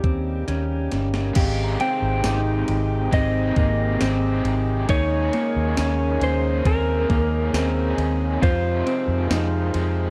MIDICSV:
0, 0, Header, 1, 8, 480
1, 0, Start_track
1, 0, Key_signature, -4, "major"
1, 0, Tempo, 882353
1, 744, Time_signature, 4, 2, 24, 8
1, 5494, End_track
2, 0, Start_track
2, 0, Title_t, "Celesta"
2, 0, Program_c, 0, 8
2, 742, Note_on_c, 0, 77, 67
2, 890, Note_on_c, 0, 82, 55
2, 1036, Note_on_c, 0, 84, 54
2, 1768, Note_off_c, 0, 77, 0
2, 1902, Note_off_c, 0, 82, 0
2, 2034, Note_off_c, 0, 84, 0
2, 5494, End_track
3, 0, Start_track
3, 0, Title_t, "Electric slide guitar"
3, 0, Program_c, 1, 29
3, 0, Note_on_c, 1, 67, 63
3, 486, Note_off_c, 1, 67, 0
3, 983, Note_on_c, 1, 79, 107
3, 1707, Note_on_c, 1, 75, 85
3, 1725, Note_off_c, 1, 79, 0
3, 2404, Note_off_c, 1, 75, 0
3, 2665, Note_on_c, 1, 73, 114
3, 3391, Note_off_c, 1, 73, 0
3, 3393, Note_on_c, 1, 72, 91
3, 3626, Note_on_c, 1, 70, 89
3, 3635, Note_off_c, 1, 72, 0
3, 4323, Note_off_c, 1, 70, 0
3, 4588, Note_on_c, 1, 72, 85
3, 5494, Note_off_c, 1, 72, 0
3, 5494, End_track
4, 0, Start_track
4, 0, Title_t, "Clean electric guitar"
4, 0, Program_c, 2, 27
4, 21, Note_on_c, 2, 60, 62
4, 258, Note_off_c, 2, 60, 0
4, 260, Note_on_c, 2, 61, 75
4, 741, Note_on_c, 2, 67, 88
4, 742, Note_off_c, 2, 61, 0
4, 982, Note_on_c, 2, 60, 75
4, 983, Note_off_c, 2, 67, 0
4, 1223, Note_off_c, 2, 60, 0
4, 1225, Note_on_c, 2, 63, 83
4, 1701, Note_off_c, 2, 63, 0
4, 1703, Note_on_c, 2, 60, 68
4, 1941, Note_on_c, 2, 58, 87
4, 1944, Note_off_c, 2, 60, 0
4, 2180, Note_on_c, 2, 60, 87
4, 2182, Note_off_c, 2, 58, 0
4, 2658, Note_off_c, 2, 60, 0
4, 2660, Note_on_c, 2, 63, 84
4, 2902, Note_off_c, 2, 63, 0
4, 2903, Note_on_c, 2, 58, 80
4, 3142, Note_on_c, 2, 61, 93
4, 3144, Note_off_c, 2, 58, 0
4, 3620, Note_off_c, 2, 61, 0
4, 3622, Note_on_c, 2, 60, 80
4, 3861, Note_on_c, 2, 58, 87
4, 3863, Note_off_c, 2, 60, 0
4, 4102, Note_off_c, 2, 58, 0
4, 4103, Note_on_c, 2, 60, 89
4, 4581, Note_on_c, 2, 65, 84
4, 4584, Note_off_c, 2, 60, 0
4, 4821, Note_on_c, 2, 60, 83
4, 4822, Note_off_c, 2, 65, 0
4, 5060, Note_off_c, 2, 60, 0
4, 5063, Note_on_c, 2, 63, 81
4, 5494, Note_off_c, 2, 63, 0
4, 5494, End_track
5, 0, Start_track
5, 0, Title_t, "Overdriven electric guitar"
5, 0, Program_c, 3, 29
5, 726, Note_on_c, 3, 56, 84
5, 744, Note_on_c, 3, 60, 90
5, 758, Note_on_c, 3, 63, 87
5, 770, Note_on_c, 3, 67, 95
5, 1691, Note_off_c, 3, 56, 0
5, 1693, Note_on_c, 3, 56, 61
5, 1697, Note_off_c, 3, 60, 0
5, 1703, Note_on_c, 3, 60, 67
5, 1711, Note_off_c, 3, 63, 0
5, 1713, Note_on_c, 3, 63, 66
5, 1715, Note_off_c, 3, 67, 0
5, 1722, Note_on_c, 3, 67, 66
5, 2172, Note_off_c, 3, 56, 0
5, 2175, Note_on_c, 3, 56, 63
5, 2178, Note_off_c, 3, 60, 0
5, 2184, Note_on_c, 3, 60, 64
5, 2191, Note_off_c, 3, 63, 0
5, 2193, Note_off_c, 3, 67, 0
5, 2193, Note_on_c, 3, 63, 66
5, 2201, Note_on_c, 3, 67, 66
5, 2652, Note_off_c, 3, 56, 0
5, 2654, Note_on_c, 3, 51, 79
5, 2656, Note_off_c, 3, 60, 0
5, 2658, Note_on_c, 3, 58, 77
5, 2664, Note_off_c, 3, 63, 0
5, 2666, Note_on_c, 3, 61, 72
5, 2669, Note_off_c, 3, 67, 0
5, 2671, Note_on_c, 3, 68, 81
5, 3369, Note_off_c, 3, 68, 0
5, 3372, Note_on_c, 3, 68, 47
5, 3381, Note_off_c, 3, 58, 0
5, 3381, Note_off_c, 3, 61, 0
5, 3388, Note_on_c, 3, 61, 39
5, 3399, Note_on_c, 3, 58, 41
5, 3404, Note_off_c, 3, 51, 0
5, 3617, Note_on_c, 3, 51, 69
5, 3618, Note_off_c, 3, 68, 0
5, 3620, Note_off_c, 3, 58, 0
5, 3626, Note_off_c, 3, 61, 0
5, 3626, Note_on_c, 3, 58, 63
5, 3634, Note_on_c, 3, 61, 69
5, 3645, Note_on_c, 3, 68, 74
5, 4090, Note_off_c, 3, 51, 0
5, 4093, Note_on_c, 3, 51, 52
5, 4097, Note_off_c, 3, 58, 0
5, 4104, Note_on_c, 3, 58, 57
5, 4106, Note_off_c, 3, 61, 0
5, 4113, Note_on_c, 3, 61, 71
5, 4120, Note_off_c, 3, 68, 0
5, 4122, Note_on_c, 3, 68, 69
5, 4568, Note_on_c, 3, 41, 92
5, 4573, Note_on_c, 3, 48, 78
5, 4577, Note_off_c, 3, 51, 0
5, 4579, Note_off_c, 3, 58, 0
5, 4579, Note_on_c, 3, 51, 74
5, 4581, Note_on_c, 3, 56, 75
5, 4583, Note_off_c, 3, 61, 0
5, 4585, Note_on_c, 3, 60, 90
5, 4587, Note_off_c, 3, 68, 0
5, 4589, Note_on_c, 3, 65, 92
5, 5292, Note_off_c, 3, 65, 0
5, 5296, Note_off_c, 3, 41, 0
5, 5298, Note_off_c, 3, 48, 0
5, 5298, Note_on_c, 3, 65, 55
5, 5300, Note_off_c, 3, 60, 0
5, 5306, Note_on_c, 3, 60, 51
5, 5315, Note_off_c, 3, 51, 0
5, 5316, Note_off_c, 3, 56, 0
5, 5318, Note_on_c, 3, 56, 49
5, 5325, Note_on_c, 3, 51, 51
5, 5494, Note_off_c, 3, 51, 0
5, 5494, Note_off_c, 3, 56, 0
5, 5494, Note_off_c, 3, 60, 0
5, 5494, Note_off_c, 3, 65, 0
5, 5494, End_track
6, 0, Start_track
6, 0, Title_t, "Harmonium"
6, 0, Program_c, 4, 20
6, 0, Note_on_c, 4, 49, 59
6, 0, Note_on_c, 4, 55, 62
6, 0, Note_on_c, 4, 58, 62
6, 0, Note_on_c, 4, 63, 51
6, 0, Note_on_c, 4, 67, 79
6, 724, Note_off_c, 4, 55, 0
6, 724, Note_off_c, 4, 67, 0
6, 725, Note_off_c, 4, 63, 0
6, 733, Note_off_c, 4, 49, 0
6, 733, Note_off_c, 4, 58, 0
6, 739, Note_on_c, 4, 48, 71
6, 739, Note_on_c, 4, 56, 62
6, 740, Note_on_c, 4, 51, 71
6, 741, Note_on_c, 4, 67, 87
6, 2642, Note_off_c, 4, 48, 0
6, 2643, Note_off_c, 4, 51, 0
6, 2643, Note_off_c, 4, 67, 0
6, 2658, Note_on_c, 4, 49, 70
6, 2659, Note_on_c, 4, 58, 60
6, 2661, Note_on_c, 4, 68, 85
6, 4562, Note_off_c, 4, 49, 0
6, 4562, Note_off_c, 4, 58, 0
6, 4563, Note_off_c, 4, 68, 0
6, 4584, Note_on_c, 4, 48, 78
6, 4586, Note_on_c, 4, 65, 82
6, 4588, Note_on_c, 4, 53, 69
6, 5494, Note_off_c, 4, 48, 0
6, 5494, Note_off_c, 4, 53, 0
6, 5494, Note_off_c, 4, 56, 0
6, 5494, Note_off_c, 4, 65, 0
6, 5494, End_track
7, 0, Start_track
7, 0, Title_t, "Fingered electric bass"
7, 0, Program_c, 5, 33
7, 19, Note_on_c, 5, 39, 92
7, 233, Note_off_c, 5, 39, 0
7, 262, Note_on_c, 5, 39, 84
7, 474, Note_off_c, 5, 39, 0
7, 504, Note_on_c, 5, 31, 71
7, 715, Note_off_c, 5, 31, 0
7, 742, Note_on_c, 5, 32, 107
7, 954, Note_off_c, 5, 32, 0
7, 1100, Note_on_c, 5, 32, 85
7, 1207, Note_off_c, 5, 32, 0
7, 1224, Note_on_c, 5, 32, 101
7, 1435, Note_off_c, 5, 32, 0
7, 1463, Note_on_c, 5, 32, 85
7, 1675, Note_off_c, 5, 32, 0
7, 1701, Note_on_c, 5, 32, 92
7, 1913, Note_off_c, 5, 32, 0
7, 1940, Note_on_c, 5, 32, 97
7, 2153, Note_off_c, 5, 32, 0
7, 2184, Note_on_c, 5, 32, 97
7, 2395, Note_off_c, 5, 32, 0
7, 2420, Note_on_c, 5, 32, 88
7, 2633, Note_off_c, 5, 32, 0
7, 2663, Note_on_c, 5, 39, 115
7, 2875, Note_off_c, 5, 39, 0
7, 3026, Note_on_c, 5, 39, 76
7, 3131, Note_off_c, 5, 39, 0
7, 3146, Note_on_c, 5, 39, 87
7, 3356, Note_off_c, 5, 39, 0
7, 3381, Note_on_c, 5, 39, 93
7, 3593, Note_off_c, 5, 39, 0
7, 3619, Note_on_c, 5, 39, 97
7, 3832, Note_off_c, 5, 39, 0
7, 3862, Note_on_c, 5, 39, 97
7, 4074, Note_off_c, 5, 39, 0
7, 4099, Note_on_c, 5, 39, 90
7, 4313, Note_off_c, 5, 39, 0
7, 4340, Note_on_c, 5, 39, 91
7, 4553, Note_off_c, 5, 39, 0
7, 4585, Note_on_c, 5, 41, 118
7, 4796, Note_off_c, 5, 41, 0
7, 4939, Note_on_c, 5, 41, 88
7, 5047, Note_off_c, 5, 41, 0
7, 5062, Note_on_c, 5, 41, 94
7, 5274, Note_off_c, 5, 41, 0
7, 5302, Note_on_c, 5, 41, 95
7, 5494, Note_off_c, 5, 41, 0
7, 5494, End_track
8, 0, Start_track
8, 0, Title_t, "Drums"
8, 20, Note_on_c, 9, 42, 38
8, 21, Note_on_c, 9, 36, 84
8, 75, Note_off_c, 9, 36, 0
8, 75, Note_off_c, 9, 42, 0
8, 260, Note_on_c, 9, 38, 49
8, 262, Note_on_c, 9, 42, 66
8, 314, Note_off_c, 9, 38, 0
8, 317, Note_off_c, 9, 42, 0
8, 498, Note_on_c, 9, 42, 47
8, 500, Note_on_c, 9, 38, 63
8, 552, Note_off_c, 9, 42, 0
8, 554, Note_off_c, 9, 38, 0
8, 619, Note_on_c, 9, 38, 69
8, 673, Note_off_c, 9, 38, 0
8, 736, Note_on_c, 9, 49, 102
8, 736, Note_on_c, 9, 51, 60
8, 740, Note_on_c, 9, 36, 110
8, 790, Note_off_c, 9, 49, 0
8, 790, Note_off_c, 9, 51, 0
8, 795, Note_off_c, 9, 36, 0
8, 979, Note_on_c, 9, 51, 40
8, 1034, Note_off_c, 9, 51, 0
8, 1217, Note_on_c, 9, 54, 68
8, 1218, Note_on_c, 9, 38, 109
8, 1218, Note_on_c, 9, 51, 54
8, 1271, Note_off_c, 9, 54, 0
8, 1272, Note_off_c, 9, 38, 0
8, 1272, Note_off_c, 9, 51, 0
8, 1458, Note_on_c, 9, 51, 44
8, 1512, Note_off_c, 9, 51, 0
8, 1700, Note_on_c, 9, 36, 81
8, 1701, Note_on_c, 9, 51, 69
8, 1754, Note_off_c, 9, 36, 0
8, 1755, Note_off_c, 9, 51, 0
8, 1938, Note_on_c, 9, 51, 36
8, 1940, Note_on_c, 9, 36, 92
8, 1993, Note_off_c, 9, 51, 0
8, 1994, Note_off_c, 9, 36, 0
8, 2179, Note_on_c, 9, 54, 64
8, 2180, Note_on_c, 9, 38, 95
8, 2182, Note_on_c, 9, 51, 61
8, 2234, Note_off_c, 9, 38, 0
8, 2234, Note_off_c, 9, 54, 0
8, 2237, Note_off_c, 9, 51, 0
8, 2421, Note_on_c, 9, 51, 39
8, 2475, Note_off_c, 9, 51, 0
8, 2659, Note_on_c, 9, 51, 66
8, 2661, Note_on_c, 9, 36, 113
8, 2713, Note_off_c, 9, 51, 0
8, 2716, Note_off_c, 9, 36, 0
8, 2900, Note_on_c, 9, 51, 41
8, 2955, Note_off_c, 9, 51, 0
8, 3140, Note_on_c, 9, 54, 61
8, 3141, Note_on_c, 9, 38, 102
8, 3141, Note_on_c, 9, 51, 62
8, 3194, Note_off_c, 9, 54, 0
8, 3195, Note_off_c, 9, 51, 0
8, 3196, Note_off_c, 9, 38, 0
8, 3381, Note_on_c, 9, 51, 45
8, 3435, Note_off_c, 9, 51, 0
8, 3620, Note_on_c, 9, 36, 88
8, 3620, Note_on_c, 9, 51, 65
8, 3674, Note_off_c, 9, 36, 0
8, 3674, Note_off_c, 9, 51, 0
8, 3861, Note_on_c, 9, 36, 85
8, 3861, Note_on_c, 9, 51, 39
8, 3915, Note_off_c, 9, 36, 0
8, 3916, Note_off_c, 9, 51, 0
8, 4103, Note_on_c, 9, 54, 73
8, 4104, Note_on_c, 9, 38, 107
8, 4107, Note_on_c, 9, 51, 68
8, 4158, Note_off_c, 9, 38, 0
8, 4158, Note_off_c, 9, 54, 0
8, 4161, Note_off_c, 9, 51, 0
8, 4343, Note_on_c, 9, 51, 46
8, 4397, Note_off_c, 9, 51, 0
8, 4584, Note_on_c, 9, 36, 120
8, 4586, Note_on_c, 9, 51, 61
8, 4638, Note_off_c, 9, 36, 0
8, 4640, Note_off_c, 9, 51, 0
8, 4824, Note_on_c, 9, 51, 37
8, 4878, Note_off_c, 9, 51, 0
8, 5062, Note_on_c, 9, 54, 72
8, 5063, Note_on_c, 9, 38, 109
8, 5063, Note_on_c, 9, 51, 55
8, 5117, Note_off_c, 9, 54, 0
8, 5118, Note_off_c, 9, 38, 0
8, 5118, Note_off_c, 9, 51, 0
8, 5299, Note_on_c, 9, 51, 48
8, 5353, Note_off_c, 9, 51, 0
8, 5494, End_track
0, 0, End_of_file